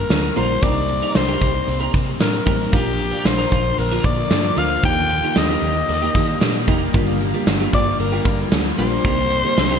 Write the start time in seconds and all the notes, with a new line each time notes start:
Already playing: D3 G3 A#3 D4 F4 A#4
0.09 D2, muted clean electric guitar stroke, snare, closed hi-hat, tambourine
0.23 muted clean electric guitar stroke
0.36 A#1 G3 A#3 D4 F4 A#4 C5, open hi-hat
0.49 muted clean electric guitar stroke
0.62 C2 C3 G3 A#3 C4 D4 D#4 G4 A#4 D5, kick, closed hi-hat
0.69 D#4
0.75 muted clean electric guitar stroke
0.88 muted clean electric guitar stroke, closed hi-hat
1.02 D#4 G4 A#4, closed hi-hat
1.14 C2 C3 G3 C4 C5, muted clean electric guitar stroke, snare, closed hi-hat, tambourine
1.28 D#4 G4 A#4
1.41 C2 D#4 G4 A#4, kick, closed hi-hat
1.54 muted clean electric guitar stroke
1.67 C2 C3 G3 C4, muted clean electric guitar stroke, closed hi-hat
1.80 D#4 G4 A#4, closed hi-hat
1.93 C3 G3 C4, muted clean electric guitar stroke, kick, closed hi-hat
2.06 muted clean electric guitar stroke
2.20 A2 A#4, muted clean electric guitar stroke, snare, closed hi-hat, tambourine
2.33 muted clean electric guitar stroke
2.46 A1 G3 A#3 C4 D#4 G4 A#4, kick, open hi-hat
2.60 muted clean electric guitar stroke
2.72 A#1 A#2 D3 F3 A#3 D4 F4 G4 A#4, kick, closed hi-hat
2.76 A#3
2.86 muted clean electric guitar stroke
2.99 muted clean electric guitar stroke, closed hi-hat
3.11 D4 F4 A#4
3.25 A#1 C5, muted clean electric guitar stroke, snare, closed hi-hat, tambourine
3.38 D4 F4 A#4
3.52 A#1 D4 F4 A#4, kick, closed hi-hat
3.65 muted clean electric guitar stroke
3.78 A#1 A#2 F3 A#3 A#4, muted clean electric guitar stroke, closed hi-hat
3.91 D4 F4 A#4, closed hi-hat
4.03 A#2 F3 A#3 D5, muted clean electric guitar stroke, kick, closed hi-hat
4.18 muted clean electric guitar stroke
4.30 G2, muted clean electric guitar stroke, snare, closed hi-hat, tambourine
4.44 muted clean electric guitar stroke
4.56 D2 D4 F4 A#4 F5, open hi-hat
4.70 muted clean electric guitar stroke
4.83 D#2 D#3 G3 A#3 D#4 G4 A#4 G5, kick, closed hi-hat
4.97 muted clean electric guitar stroke
5.10 muted clean electric guitar stroke, closed hi-hat
5.23 A#3 D#4 G4, closed hi-hat
5.36 D#2 D#3 A#3 D#4 D#5, muted clean electric guitar stroke, snare, closed hi-hat, tambourine
5.49 A#3 D#4 G4
5.62 D#2 A#3 D#4 G4, closed hi-hat
5.76 muted clean electric guitar stroke
5.88 D#2 D#3 A#3 D#4, muted clean electric guitar stroke, closed hi-hat
6.02 A#3 D#4 G4, closed hi-hat
6.14 D#3 A#3 D#4 G4, kick, closed hi-hat
6.28 muted clean electric guitar stroke
6.41 A#2, muted clean electric guitar stroke, snare, closed hi-hat, tambourine
6.55 muted clean electric guitar stroke
6.67 F1 A#3 D#4 G4 A#4, kick, open hi-hat
6.81 muted clean electric guitar stroke
6.94 G1 G2 D3 G3 A#3 D4 F4 G4 A#4, kick, closed hi-hat
7.08 muted clean electric guitar stroke
7.21 muted clean electric guitar stroke, closed hi-hat
7.34 A#3 F4 G4, closed hi-hat
7.46 G1 G2 D3 G3, muted clean electric guitar stroke, snare, closed hi-hat, tambourine
7.60 A#3 F4 G4
7.73 G1 A#3 F4 G4 D5, kick, closed hi-hat
7.87 muted clean electric guitar stroke
7.99 G1 G2 D3 G3 A#4, muted clean electric guitar stroke, closed hi-hat
8.12 A#3 F4 G4
8.25 G2 D3 G3, muted clean electric guitar stroke, kick, closed hi-hat
8.39 muted clean electric guitar stroke
8.52 D2, muted clean electric guitar stroke, snare, closed hi-hat, tambourine
8.65 muted clean electric guitar stroke
8.78 A#1 G3 A#3 D4 F4 G4 A#4 C5, open hi-hat
8.92 muted clean electric guitar stroke
9.04 C2 C3 G3 A#3 C4 D#4 G4 A#4, kick, closed hi-hat
9.18 muted clean electric guitar stroke
9.31 muted clean electric guitar stroke, closed hi-hat
9.44 A#3 D#4 G4
9.56 C2 C3 G3 C4, muted clean electric guitar stroke, snare, closed hi-hat, tambourine
9.71 A#3 D#4 G4